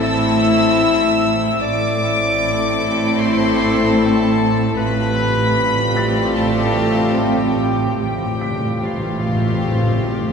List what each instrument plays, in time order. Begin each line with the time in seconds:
Already playing: double bass section A1, cello section A2, viola section A3 C4, french horn section C4 E4, violin section E4 A4, glass harmonica E4 A4 C5, felt piano D5 A5 D6 A6
0.03 clarinet E5, violin section E6
1.61 double bass section A1, cello section A2, viola section A3 C4, french horn section C4 E4, violin section E4 A4 D6, glass harmonica E4 A4 C5, clarinet D5
3.19 clarinet C5, violin section C6
3.99 clarinet A4, violin section A5
4.77 double bass section A1, timpani A2, cello section A2, french horn section G3 F4, viola section A3 C4, glass harmonica C4 F4 G4, violin section F4 G4 B5, clarinet B4
4.85 timpani A2
4.92 timpani A2
5.08 timpani A2
5.15 timpani A2
5.22 timpani A2
5.37 timpani A2
5.44 timpani A2
5.51 timpani A2
5.73 timpani A2
5.82 timpani A2
5.89 timpani A2
5.96 timpani A2, felt piano A6
6.04 timpani A2
6.12 timpani A2
6.19 timpani A2
6.35 timpani A2, clarinet A4, violin section A5
6.42 timpani A2
6.79 timpani A2
6.87 timpani A2
7.02 timpani A2
7.09 timpani A2
7.16 timpani A2, clarinet G4, violin section G5
7.33 timpani A2
7.40 timpani A2
7.47 timpani A2
7.55 timpani A2
7.63 timpani A2
7.71 timpani A2
7.79 timpani A2
7.86 timpani A2
7.95 timpani A2, glass harmonica G4 C5, violin section G5
7.99 double bass section A1, cello section A2, timpani A2, french horn section G3 F4, viola section A3 C4, glass harmonica F4, violin section F4 G4, clarinet G4
8.10 timpani A2
8.18 timpani A2
8.26 timpani A2
8.33 timpani A2
8.41 timpani A2, felt piano B6
8.50 timpani A2
8.56 timpani A2
8.64 timpani A2
8.73 timpani A2
8.81 timpani A2, clarinet F4, violin section F5
8.88 timpani A2
8.97 timpani A2
9.05 timpani A2
9.12 timpani A2
9.20 timpani A2
9.27 timpani A2
9.35 timpani A2
9.43 timpani A2
9.51 timpani A2
9.59 timpani A2
9.67 timpani A2
9.75 timpani A2
9.83 timpani A2
9.90 timpani A2
9.98 timpani A2
10.06 timpani A2
10.14 timpani A2
10.22 timpani A2
10.28 timpani A2